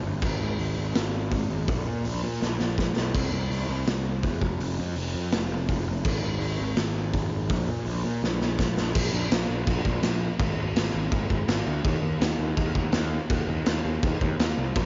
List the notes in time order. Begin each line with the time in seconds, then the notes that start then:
0.04 G1
0.22 G#1, kick, crash
0.40 G#1
0.59 G#1, open hi-hat
0.78 G#1
0.95 G#1, snare, open hi-hat
1.31 G#1, kick, open hi-hat
1.50 G#1
1.68 A#1, kick, open hi-hat
1.87 A#2
2.05 A#1, open hi-hat
2.23 A#2
2.41 A#1, snare
2.60 A#1, snare
2.78 A#1, kick, snare
2.96 B1, snare
3.14 C2, kick, crash
3.33 C2
3.50 C2, open hi-hat
3.68 C2
3.87 C2, snare, open hi-hat
4.23 E2, kick, open hi-hat
4.41 F1, kick
4.60 F1, open hi-hat
4.79 F2
4.96 F1, open hi-hat
5.14 F2
5.32 F1, snare, open hi-hat
5.51 F1
5.69 F1, kick, open hi-hat
5.87 F1
6.05 G#1, kick, crash
6.23 G#1
6.40 G#1, open hi-hat
6.59 G#1
6.76 G#1, snare, open hi-hat
7.14 G#1, kick, open hi-hat
7.31 G#1
7.50 A#1, kick, open hi-hat
7.68 A#2
7.85 A#1, open hi-hat
8.04 A#2
8.23 A#1, snare
8.41 A#1, snare
8.59 A#1, kick, snare
8.77 A#1, snare
8.95 A#1, kick, crash
9.13 A#1
9.31 A#1, snare, crash
9.49 A#1
9.67 A#1, kick, crash
9.85 A#1, kick
10.03 A#1, snare, crash
10.39 G#1, kick, crash
10.57 G#1
10.76 G#1, snare, crash
10.94 G#1
11.12 G#1, kick, crash
11.30 G#1, kick
11.48 G#1, snare, crash
11.67 D2
11.85 D#2, kick, crash
12.02 D#2
12.21 D#2, snare, crash
12.39 D#2
12.57 D#2, kick, crash
12.75 D#2, kick
12.92 D#2, snare, crash
13.30 D#2, kick, crash
13.49 D#2
13.66 D#2, snare, crash
13.85 D#2
14.03 D#2, kick, crash
14.21 D#2, kick
14.39 D#2, snare, crash
14.58 C2
14.76 A#1, kick, crash